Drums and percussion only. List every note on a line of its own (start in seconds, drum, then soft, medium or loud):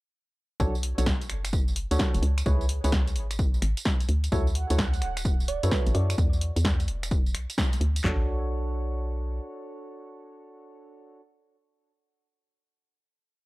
0.60 kick loud
0.60 tambourine medium
0.75 tambourine soft
0.83 open hi-hat loud
0.98 closed hi-hat medium
0.98 tambourine medium
1.06 kick loud
1.06 snare loud
1.06 tambourine medium
1.21 closed hi-hat soft
1.21 tambourine soft
1.30 finger snap medium
1.30 open hi-hat loud
1.45 finger snap medium
1.45 closed hi-hat medium
1.45 tambourine medium
1.53 kick loud
1.53 tambourine medium
1.68 tambourine soft
1.76 open hi-hat loud
1.91 closed hi-hat medium
1.91 tambourine medium
1.99 kick loud
1.99 snare loud
1.99 tambourine medium
2.14 closed hi-hat medium
2.14 tambourine soft
2.23 open hi-hat loud
2.38 finger snap medium
2.38 closed hi-hat medium
2.38 tambourine medium
2.46 kick loud
2.46 tambourine medium
2.61 tambourine soft
2.69 open hi-hat loud
2.84 closed hi-hat medium
2.84 tambourine medium
2.92 kick loud
2.92 snare loud
2.92 tambourine medium
3.07 closed hi-hat soft
3.07 tambourine soft
3.16 open hi-hat loud
3.31 finger snap medium
3.31 closed hi-hat medium
3.31 tambourine medium
3.39 kick loud
3.39 tambourine soft
3.54 tambourine soft
3.62 finger snap medium
3.62 open hi-hat loud
3.77 closed hi-hat medium
3.77 tambourine medium
3.85 kick loud
3.85 snare loud
3.85 tambourine medium
4.00 closed hi-hat soft
4.00 tambourine soft
4.09 open hi-hat medium
4.24 closed hi-hat medium
4.24 tambourine medium
4.32 kick loud
4.32 tambourine medium
4.47 tambourine soft
4.55 open hi-hat loud
4.70 closed hi-hat medium
4.70 tambourine medium
4.79 kick loud
4.79 snare loud
4.79 tambourine medium
4.94 closed hi-hat soft
4.94 tambourine soft
5.02 finger snap medium
5.02 open hi-hat medium
5.17 finger snap medium
5.17 closed hi-hat medium
5.17 tambourine medium
5.25 kick loud
5.25 tambourine medium
5.40 tambourine soft
5.48 open hi-hat loud
5.63 closed hi-hat medium
5.63 tambourine medium
5.71 kick loud
5.71 snare loud
5.71 tambourine medium
5.87 closed hi-hat soft
5.87 tambourine soft
5.95 open hi-hat medium
6.10 finger snap medium
6.10 closed hi-hat medium
6.10 tambourine medium
6.18 kick loud
6.18 tambourine medium
6.33 tambourine soft
6.41 open hi-hat loud
6.56 closed hi-hat medium
6.56 tambourine medium
6.65 kick loud
6.65 snare loud
6.65 tambourine medium
6.80 closed hi-hat soft
6.80 tambourine soft
6.88 open hi-hat medium
7.03 finger snap medium
7.03 closed hi-hat medium
7.03 tambourine medium
7.11 kick loud
7.11 tambourine medium
7.26 tambourine soft
7.35 finger snap medium
7.35 open hi-hat loud
7.50 closed hi-hat medium
7.50 tambourine medium
7.58 kick loud
7.58 snare loud
7.58 tambourine medium
7.73 closed hi-hat soft
7.73 tambourine soft
7.81 open hi-hat medium
7.96 closed hi-hat medium
7.96 tambourine medium
8.04 kick loud
8.04 clap medium
8.04 floor tom loud